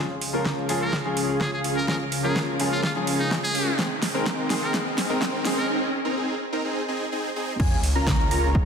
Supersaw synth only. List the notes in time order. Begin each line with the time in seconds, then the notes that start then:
Already playing: C#4 F4 G#4
0.33 C#4 F4 A#4
0.69 C#4 F4 A#4
1.05 C#4 F4 G#4
1.29 C#4 F4 G#4
1.64 C#4 F4 G#4
1.88 C#4 F4 G#4
2.24 C#4 F4 A#4
2.60 C#4 F4 A#4
2.95 C#4 F4 G#4
3.19 C#4 F4 G#4
3.55 C#4 F4 G#4
3.79 C4 D#4 G#4
4.14 C4 D#4 A#4
4.50 C4 D#4 A#4
4.74 C4 D#4 G#4
5.09 C4 D#4 A#4
5.45 C4 D#4 A#4
5.69 C4 D#4 G#4
6.05 C4 D#4 A#4
6.17 C4 D#4 G#4
6.52 C4 D#4 A#4
6.64 C4 D#4 G#4
6.88 C4 D#4 G#4
7.12 C4 D#4 G#4
7.36 C4 D#4 G#4
7.60 F4
7.95 C#4 F4 A#4
8.31 C#4 F4 A#4